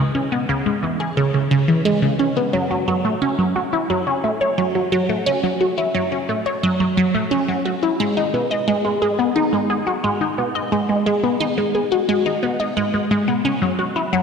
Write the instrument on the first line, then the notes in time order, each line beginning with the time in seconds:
synth arpeggio sound
0.15 C#4
0.32 B3
0.49 C#3
0.66 G#3
0.83 E3
1.00 G#4
1.17 C#3
1.34 C#3
1.51 C#3
1.68 E3
1.85 G#3
2.02 C#3
2.19 C#4
2.37 B3
2.53 F#3
2.71 F#3
2.88 F#3
3.05 A3
3.22 C#4
3.39 F#3
3.56 F#4
3.73 E4
3.90 F#3
4.07 C#4
4.24 A3
4.41 C#5
4.58 F#3
4.75 F#3
4.92 F#3
5.09 A3
5.26 C#4
5.44 F#3
5.61 F#4
5.78 E4
5.95 F#3
6.12 C#4
6.29 A3
6.46 C#5
6.63 F#3
6.80 F#3
6.97 F#3
7.14 A3
7.31 C#4
7.48 F#3
7.66 F#4
7.83 E4
8.00 G#3
8.17 D#4
8.34 B3
8.51 D#5
8.68 G#3
8.85 G#3
9.02 G#3
9.19 B3
9.36 D#4
9.53 G#3
9.70 G#4
9.87 F#4
10.04 G#3
10.21 D#4
10.38 B3
10.55 D#5
10.72 G#3
10.89 G#3
11.06 G#3
11.23 B3
11.40 D#4
11.58 G#3
11.75 G#4
11.92 F#4
12.09 G#3
12.26 D#4
12.43 B3
12.60 D#5
12.77 G#3
12.94 G#3
13.11 G#3
13.28 B3
13.45 C#4
13.62 F#3
13.79 F#4
13.96 E4
14.13 F#3